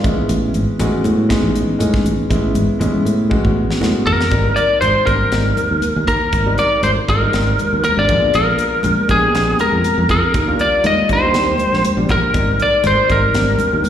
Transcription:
Already playing: grand piano C#5
0.03 fingered electric bass A1, grand piano G#3 B3 C#4 E4, kick, closed hi-hat
0.18 muted fingered electric bass stroke
0.29 fingered electric bass A1, closed hi-hat
0.54 fingered electric bass G#1, closed hi-hat, muted conga
0.79 fingered electric bass A1, grand piano G#3 B3 C#4 F#4, closed hi-hat, high conga
1.04 fingered electric bass A2, closed hi-hat, high conga
1.29 grand piano G#3 B3 C#4 D#4, kick, snare, closed hi-hat
1.43 fingered electric bass A1
1.56 closed hi-hat
1.78 fingered electric bass A2, grand piano G#3 B3 C#4 D#4, closed hi-hat, muted conga, high conga
1.94 kick, snare
2.04 fingered electric bass A1, closed hi-hat
2.18 muted fingered electric bass stroke
2.30 fingered electric bass A1, grand piano G#3 B3 C#4 E4, kick, closed hi-hat
2.54 fingered electric bass G#1, closed hi-hat, muted conga, high conga
2.79 fingered electric bass A1, grand piano G#3 B3 C#4 E4, closed hi-hat, high conga
3.05 fingered electric bass A2, closed hi-hat
3.30 grand piano G#3 B3 C#4 F#4, kick, high tom
3.45 fingered electric bass A1, kick
3.71 snare
3.80 fingered electric bass A2, grand piano G#3 B3 C#4 F#4, snare, muted conga, high conga
4.06 fingered electric bass A1, lead electric guitar A#4, floor tom
4.20 muted fingered electric bass stroke, snare
4.31 fingered electric bass G#1, grand piano G3 A#3 C4 D#4, kick, closed hi-hat
4.56 lead electric guitar D5, closed hi-hat, muted conga
4.81 fingered electric bass G#1, lead electric guitar C5, closed hi-hat, high conga
5.06 fingered electric bass G#1, grand piano G3 A#3 C4 D4, lead electric guitar A#4, kick, closed hi-hat
5.32 fingered electric bass G#1, grand piano G3 A#3 C4 D#4, snare, closed hi-hat
5.57 closed hi-hat, high conga
5.71 fingered electric bass D#2
5.82 closed hi-hat, muted conga, high conga
5.96 fingered electric bass D#2
6.07 fingered electric bass D#2, lead electric guitar A#4, kick, closed hi-hat
6.32 fingered electric bass G#1, kick, closed hi-hat, muted conga
6.46 grand piano G3 A#3 C4 D#4
6.58 lead electric guitar D5, closed hi-hat, muted conga
6.83 fingered electric bass G#1, lead electric guitar C5, closed hi-hat, high conga
7.08 fingered electric bass G#1, grand piano G3 A#3 C4 F4, lead electric guitar A#4, kick, closed hi-hat
7.20 grand piano G3 A#3 C4 D#4
7.32 fingered electric bass G#1, grand piano G3 A#3 C4 D#4, snare, closed hi-hat
7.59 closed hi-hat, high conga
7.73 fingered electric bass D#2
7.84 lead electric guitar A#4, closed hi-hat, muted conga, high conga
7.96 fingered electric bass G#1, grand piano G3 A#3 C4 D4, lead electric guitar D5
8.08 fingered electric bass A#1, grand piano G#3 B3 D4 F4, kick, closed hi-hat, low conga
8.33 fingered electric bass A#1, lead electric guitar A#4, closed hi-hat, muted conga
8.58 closed hi-hat, muted conga
8.83 fingered electric bass A#1, closed hi-hat, high conga
9.08 fingered electric bass A#1, grand piano G#3 B3 D4 G4, lead electric guitar G#4, kick, closed hi-hat
9.33 fingered electric bass A#1, grand piano G#3 B3 D4 G4, snare, closed hi-hat
9.59 lead electric guitar A#4, closed hi-hat, high conga
9.72 fingered electric bass F2
9.84 closed hi-hat, muted conga, high conga
9.98 fingered electric bass F2
10.09 fingered electric bass F2, lead electric guitar A#4, kick, closed hi-hat
10.34 fingered electric bass D#2, kick, closed hi-hat
10.47 grand piano G3 A#3 D4 F4
10.59 lead electric guitar D5, closed hi-hat, muted conga
10.84 fingered electric bass D#2, lead electric guitar D#5, closed hi-hat, high conga
11.08 fingered electric bass D#2, grand piano G3 A#3 D4 F4, kick, closed hi-hat
11.13 lead electric guitar C5
11.22 grand piano G3 A#3 D4 G4
11.33 fingered electric bass D#2, grand piano G3 A#3 D4 G4, snare, closed hi-hat
11.58 closed hi-hat, high conga
11.72 fingered electric bass A#1, snare
11.83 closed hi-hat, muted conga, high conga
11.96 fingered electric bass A#1, grand piano G3 A#3 D4 G4
12.09 fingered electric bass A#1, lead electric guitar A#4, kick, closed hi-hat, low conga
12.33 fingered electric bass G#1, grand piano G3 A#3 C4 D#4, kick, closed hi-hat
12.59 lead electric guitar D5, closed hi-hat, muted conga
12.84 fingered electric bass G#1, lead electric guitar C5, closed hi-hat, high conga
13.08 fingered electric bass G#1, grand piano G3 A#3 C4 D#4, lead electric guitar A#4, kick, closed hi-hat
13.34 fingered electric bass G#1, grand piano G3 A#3 C4 D4, snare, closed hi-hat
13.59 closed hi-hat, high conga
13.73 fingered electric bass D#2
13.84 closed hi-hat, muted conga, high conga

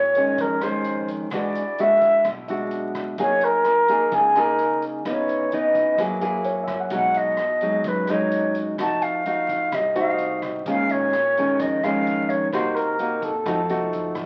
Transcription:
Already playing: nylon-string guitar A#2, grand piano C#5, flute C#5
0.15 nylon-string guitar D#3 G#3 C#4, closed hi-hat
0.38 upright bass F2, nylon-string guitar F2, flute A#4, kick, closed hi-hat
0.61 nylon-string guitar D#3 G#3 C#4, flute C5, cross-stick, closed hi-hat
0.84 closed hi-hat
1.08 closed hi-hat
1.31 upright bass E2, nylon-string guitar E3 G#3 D4 F#4, flute D5, kick, cross-stick, closed hi-hat
1.55 closed hi-hat
1.78 nylon-string guitar G#3 D4 F#4, flute E5, closed hi-hat
2.01 kick, closed hi-hat
2.25 upright bass B1, nylon-string guitar B2, kick, cross-stick, closed hi-hat
2.48 nylon-string guitar G#3 D4 F#4, grand piano E5, closed hi-hat
2.71 closed hi-hat
2.95 kick, cross-stick, closed hi-hat
3.18 upright bass F#2, nylon-string guitar F#3 A#3 D#4 G#4, flute C#5, kick, closed hi-hat
3.41 flute A#4, closed hi-hat
3.65 cross-stick, closed hi-hat
3.88 nylon-string guitar A#3 D#4 G#4, closed hi-hat
4.12 upright bass C#2, nylon-string guitar C#3, flute G#4, kick, closed hi-hat
4.35 nylon-string guitar A#3 D#4 G#4, flute A#4, cross-stick, closed hi-hat
4.59 closed hi-hat
4.82 closed hi-hat
5.05 upright bass C#2, nylon-string guitar C#3 E3 B3 D#4, flute C#5, kick, cross-stick, closed hi-hat
5.29 closed hi-hat
5.52 nylon-string guitar E3 B3 D#4, flute D#5, closed hi-hat
5.75 kick, closed hi-hat
5.98 upright bass F#2, nylon-string guitar F#3 A#3 E4 G#4, kick, cross-stick, closed hi-hat
6.21 nylon-string guitar A#3 E4 G#4, closed hi-hat
6.44 grand piano C#5, closed hi-hat
6.63 grand piano E5, cross-stick, closed hi-hat
6.68 kick
6.80 grand piano F#5
6.90 upright bass B1, nylon-string guitar B2 F#3 G#3 D#4, flute F#5, kick, closed hi-hat
7.14 flute D#5, closed hi-hat
7.37 cross-stick, closed hi-hat
7.61 nylon-string guitar F#3 G#3 D#4, closed hi-hat
7.84 upright bass F#2, nylon-string guitar F#2, flute B4, kick, closed hi-hat
8.07 nylon-string guitar F#3 G#3 D#4, flute C#5, cross-stick, closed hi-hat
8.31 closed hi-hat
8.55 closed hi-hat
8.78 upright bass F1, nylon-string guitar F3 A3 D#4 F#4, flute A5, kick, cross-stick, closed hi-hat
9.02 flute F5, closed hi-hat
9.26 nylon-string guitar A3 D#4 F#4, closed hi-hat
9.49 kick, closed hi-hat
9.72 upright bass C2, nylon-string guitar C3, flute D#5, kick, cross-stick, closed hi-hat
9.95 nylon-string guitar A3 D#4 F#4, grand piano C5, flute F5, closed hi-hat
10.13 grand piano D#5
10.18 closed hi-hat
10.42 kick, cross-stick, closed hi-hat
10.66 upright bass A#1, nylon-string guitar A#2 D#3 G#3 C#4, flute F5, kick, closed hi-hat
10.89 flute C#5, closed hi-hat
11.13 cross-stick, closed hi-hat
11.37 nylon-string guitar D#3 G#3 C#4, closed hi-hat
11.60 upright bass F2, nylon-string guitar F2, flute D#5, kick, closed hi-hat
11.83 nylon-string guitar D#3 G#3 C#4, flute F5, cross-stick, closed hi-hat
12.07 closed hi-hat
12.29 flute C#5, closed hi-hat
12.52 upright bass C2, nylon-string guitar C3 A#3 D#4 F#4, flute C5, kick, cross-stick, closed hi-hat
12.74 flute A#4, closed hi-hat
12.99 nylon-string guitar A#3 D#4 F#4, closed hi-hat
13.22 flute A4, kick, closed hi-hat
13.46 upright bass F2, nylon-string guitar F3 A3 D#4 F#4, kick, cross-stick, closed hi-hat
13.69 upright bass F1, nylon-string guitar A3 D#4 F#4, closed hi-hat
13.93 upright bass F#1, closed hi-hat
14.15 upright bass A1, kick, cross-stick, closed hi-hat

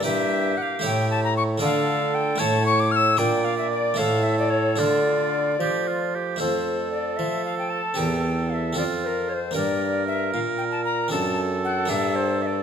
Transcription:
0.01 harpsichord A#3 E4 D5, oboe G4
0.05 bassoon G2, harpsichord G2, recorder E5
0.57 recorder F#5
0.62 recorder F5
0.79 bassoon A2, harpsichord A3 E4 C#5
0.84 harpsichord A2, recorder G5
1.11 recorder A5
1.24 recorder A#5
1.37 recorder C#6
1.58 harpsichord A3 F4 D5, oboe A4
1.62 bassoon D3, harpsichord D3, recorder F5
2.15 recorder G5
2.36 harpsichord A3 E4 C#5, oboe C#5
2.40 bassoon A2, harpsichord A2, recorder A5
2.66 recorder C#6
2.80 recorder D6
2.91 recorder F6
2.96 recorder E6
3.17 bassoon A#2, harpsichord A#2 D4 D5, oboe D5, recorder G5
3.45 recorder F5
3.58 recorder E5
3.71 recorder D5
3.94 harpsichord A3 E4 A4, recorder F5
3.99 bassoon A2, harpsichord A2, oboe A4
4.24 recorder E5
4.39 recorder D5
4.50 recorder C#5
4.76 bassoon D3, harpsichord A3 F4 A4, oboe F4, recorder D5
4.80 harpsichord D3
5.59 bassoon F3, harpsichord F3, oboe G4
5.88 oboe F4
6.15 oboe G4
6.36 bassoon F2, harpsichord A3 F4 A4, recorder C5
6.41 harpsichord F2, oboe A4
6.92 recorder D5
7.17 bassoon F3, harpsichord F3, recorder E5
7.45 recorder F5
7.58 recorder G5
7.70 recorder A5
7.94 bassoon E2, harpsichord C4 G4 A#4, recorder G5
7.99 harpsichord E2
8.50 recorder F5
8.54 recorder E5
8.73 bassoon F2, harpsichord C4 F4 A4
8.77 harpsichord F2, oboe F4, recorder D5
9.03 recorder A#4 C5
9.29 recorder C#5
9.34 recorder C5
9.51 bassoon G2, harpsichord A#3 D4 A#4
9.56 harpsichord G2, oboe A#4, recorder D5
10.07 recorder E5
10.33 bassoon A#2, harpsichord A#2, recorder F5
10.58 recorder G5
10.71 recorder A5
10.85 recorder A#5
11.08 harpsichord C4 D4 A4, oboe A4, recorder A5
11.12 bassoon F#2, harpsichord F#2
11.65 recorder F#5
11.86 harpsichord A#3 D4 G4, recorder E5
11.90 harpsichord G2, bassoon G2
12.16 recorder C5
12.42 recorder E5
12.47 recorder D5

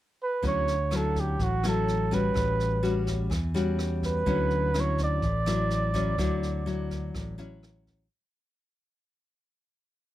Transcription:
0.23 flugelhorn B4
0.42 fingered electric bass D2, nylon-string guitar D3 F#3 C#4 E4, kick, snare
0.48 flugelhorn C#5
0.68 snare
0.91 nylon-string guitar F#3 C#4 E4, cross-stick, snare
0.96 flugelhorn A4
1.16 kick, snare
1.20 flugelhorn G4
1.40 fingered electric bass A1, nylon-string guitar A2, flugelhorn F#4, kick, snare
1.63 nylon-string guitar F#3 C#4 E4, cross-stick, snare
1.68 flugelhorn A4
1.88 snare
2.11 nylon-string guitar G3 C#4 F#4, flugelhorn B4, kick, snare
2.34 fingered electric bass A1, nylon-string guitar A2, kick, cross-stick, snare
2.60 snare
2.83 nylon-string guitar G3 C#4 F#4, snare
3.07 kick, snare
3.30 fingered electric bass E2, nylon-string guitar E3, kick, cross-stick, snare
3.54 nylon-string guitar G3 C#4 F#4, snare
3.79 cross-stick, snare
4.03 flugelhorn B4, kick, snare
4.26 fingered electric bass D2, nylon-string guitar D3 F#3 C#4 E4, kick, snare
4.50 snare
4.74 nylon-string guitar F#3 C#4 E4, cross-stick, snare
4.80 flugelhorn C#5
4.98 kick, snare
5.04 flugelhorn D5
5.22 fingered electric bass A1, nylon-string guitar A2, kick, snare
5.46 nylon-string guitar F#3 E4, cross-stick, snare
5.70 snare
5.94 nylon-string guitar F#3 C#4 E4, kick, snare
6.18 fingered electric bass D2, nylon-string guitar D3 F#3 E4, kick, cross-stick, snare
6.43 snare
6.66 nylon-string guitar F#3 E4, snare
6.91 kick, snare
7.14 fingered electric bass A1, nylon-string guitar A2, kick, cross-stick, snare
7.38 nylon-string guitar F#3 C#4 E4, snare
7.63 cross-stick, snare
7.87 kick, snare

